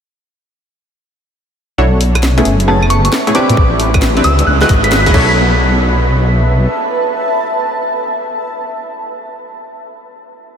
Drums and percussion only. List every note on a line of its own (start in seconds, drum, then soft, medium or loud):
2.01 open hi-hat loud
2.15 cross-stick medium
2.15 closed hi-hat medium
2.15 claves medium
2.23 snare loud
2.38 closed hi-hat soft
2.45 open hi-hat loud
2.60 closed hi-hat medium
2.83 claves medium
2.90 open hi-hat loud
3.05 closed hi-hat medium
3.13 cross-stick soft
3.13 snare loud
3.27 closed hi-hat soft
3.35 open hi-hat loud
3.49 closed hi-hat medium
3.57 kick loud
3.80 open hi-hat loud
3.94 kick loud
3.94 cross-stick medium
3.94 closed hi-hat medium
3.94 claves medium
4.02 snare loud
4.17 closed hi-hat soft
4.24 open hi-hat loud
4.39 closed hi-hat medium
4.61 cross-stick medium
4.61 snare medium
4.69 kick loud
4.69 open hi-hat loud
4.84 closed hi-hat medium
4.92 snare loud
5.06 kick medium
5.06 closed hi-hat medium
5.14 kick loud
5.14 crash medium